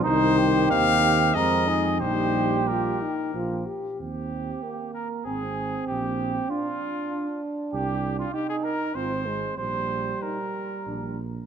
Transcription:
<<
  \new Staff \with { instrumentName = "Trumpet" } { \time 3/4 \key ees \major \tempo 4 = 94 c''4 f''4 ees''4 | c''4 bes'4. r8 | g'4. bes'8 aes'4 | g'4 f'4. r8 |
g'8. f'16 g'16 aes'16 bes'8 c''4 | c''4 bes'4. r8 | }
  \new Staff \with { instrumentName = "Flugelhorn" } { \time 3/4 \key ees \major ees'8 g'4. bes'8 aes'8 | g'2~ g'8 r8 | g'4. bes'8 aes'4 | g'4 f'4. r8 |
g'8. f'16 g'16 aes'16 bes'8 c''4 | c''4 bes'4. r8 | }
  \new Staff \with { instrumentName = "French horn" } { \time 3/4 \key ees \major ees'4 c'4 c'8 ees'8 | ees'4 f'8 ees'8 f'8 g'8 | r4 bes4 c'4 | r4 d'4 d'4 |
r4 ees'4 f'4 | r4 ees'4 d'4 | }
  \new Staff \with { instrumentName = "Euphonium" } { \time 3/4 \key ees \major ees2 aes4 | g4. r8 f8 r8 | c'4 bes4 c'4~ | c'4 d'2~ |
d'4 ees'4 c'8 aes8 | g2~ g8 r8 | }
  \new Staff \with { instrumentName = "Tuba" } { \clef bass \time 3/4 \key ees \major c,4 ees,4 f,4 | bes,,4. r8 bes,,8 r8 | ees,4 r4 aes,,4 | bes,,4 r2 |
c,4 r4 aes,,4 | bes,,4 r4 bes,,4 | }
>>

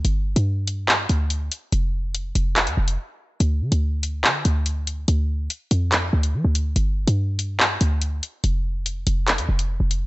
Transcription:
<<
  \new Staff \with { instrumentName = "808-style bass" } { \clef bass \time 4/4 \key g \dorian \tempo 4 = 143 g,,8. g,4.~ g,16 d,4 r8 | f,,4. f,,8. f,16 f,,8 r4 | d,8 d16 d,4~ d,16 d8 d,4. | d,4 r8 f,4 d,8 f16 d,8. |
g,,8. g,4.~ g,16 d,4 r8 | f,,4. f,,8. f,16 f,,8. f,,8. | }
  \new DrumStaff \with { instrumentName = "Drums" } \drummode { \time 4/4 hh8. hh16 r8 hh8 hc8 hh8 hh8 hh8 | hh4 hh8 hh8 <hc hh>16 hh8 hh16 r4 | hh8. hh16 r8 hh8 hc8 hh8 hh8 hh8 | hh4 hh8 hh8 <hc hh>8. hh16 r8 hh8 |
hh8. hh16 r8 hh8 hc8 hh8 hh8 hh8 | hh4 hh8 hh8 <hc hh>16 hh8 hh16 r8 hh8 | }
>>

